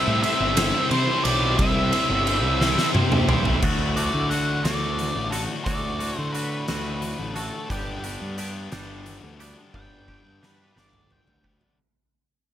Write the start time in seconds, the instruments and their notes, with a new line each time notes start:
Already playing: distorted electric guitar C3 G3 C4 E4 G4 C5, lead electric guitar E5
0.08 picked electric bass A2
0.23 distorted electric guitar C4 E4 G4 C5, lead electric guitar E5, ride
0.40 picked electric bass G1
0.57 distorted electric guitar C4 E4 G4 C5, snare, ride
0.90 picked electric bass C3, distorted electric guitar C4 E4 G4 C5, lead electric guitar C5, ride
1.24 picked electric bass B1, distorted electric guitar E4 G4 C5, lead electric guitar D5, ride
1.28 distorted electric guitar C4
1.58 picked electric bass C2, distorted electric guitar C3 G3 C4 E4 G4 C5, lead electric guitar E5, kick, ride
1.92 distorted electric guitar C4 E4 G4 C5, ride
2.10 picked electric bass G1
2.26 distorted electric guitar C4 E4 G4 C5, ride
2.44 picked electric bass C2
2.60 distorted electric guitar C4 E4 G4 C5, snare
2.78 snare
2.93 picked electric bass C3, distorted electric guitar C4 E4 G4 C5, high tom
3.12 mid tom
3.27 picked electric bass B1, distorted electric guitar C4 E4 G4 C5, mid tom
3.45 floor tom
3.62 distorted electric guitar D2 A2 D3 A3 F#4, picked electric bass D2, kick, crash
3.96 clean electric guitar A2, distorted electric guitar D3 A3 F#4, lead electric guitar D5, closed hi-hat
4.14 picked electric bass D3
4.30 distorted electric guitar A2 D3 A3 F#4, lead electric guitar F#5, closed hi-hat
4.64 picked electric bass D2, distorted electric guitar D2 A2 D3 A3 F#4, lead electric guitar D5, snare, closed hi-hat
4.99 closed hi-hat
5.16 picked electric bass A1
5.31 clean electric guitar A2, distorted electric guitar A3 F#4, lead electric guitar A4, closed hi-hat
5.35 distorted electric guitar D3
5.64 distorted electric guitar D2 A2 D3 A3, picked electric bass D2, lead electric guitar D5, kick, closed hi-hat
5.69 distorted electric guitar F#4
6.00 clean electric guitar A2, distorted electric guitar D3 A3 F#4, closed hi-hat
6.17 picked electric bass D3, lead electric guitar C5
6.32 distorted electric guitar A2 D3, lead electric guitar B4, closed hi-hat
6.36 distorted electric guitar A3 F#4
6.67 picked electric bass D2, distorted electric guitar D2 A2 D3 A3 F#4, snare, closed hi-hat
7.02 closed hi-hat
7.20 picked electric bass A1
7.35 clean electric guitar A2, distorted electric guitar D3 A3 F#4, lead electric guitar A4, closed hi-hat
7.70 picked electric bass G1, distorted electric guitar G2 D3 G3 B3 D4 G4, lead electric guitar G4, kick, closed hi-hat
8.04 distorted electric guitar G3 B3 D4 G4, closed hi-hat
8.22 picked electric bass G2
8.38 distorted electric guitar G3 B3 D4 G4, closed hi-hat
8.72 picked electric bass G1, distorted electric guitar G2 D3 G3 B3 D4 G4, snare, closed hi-hat
9.06 closed hi-hat
9.23 picked electric bass D2
9.39 distorted electric guitar G3 B3 D4 G4, closed hi-hat
9.73 picked electric bass G1, distorted electric guitar G2 D3 G3 B3 D4 G4, lead electric guitar G5, kick, high tom
10.07 distorted electric guitar G3 B3 D4 G4, kick
10.25 picked electric bass G2
10.41 distorted electric guitar G3 B3 D4 G4, lead electric guitar B4, snare
10.75 picked electric bass G1, distorted electric guitar G2 D3 G3 B3 D4 G4, lead electric guitar D5, snare
10.93 mid tom
11.11 lead electric guitar G5, mid tom
11.27 picked electric bass D2, floor tom
11.44 distorted electric guitar G3 B3 D4 G4, kick
11.61 floor tom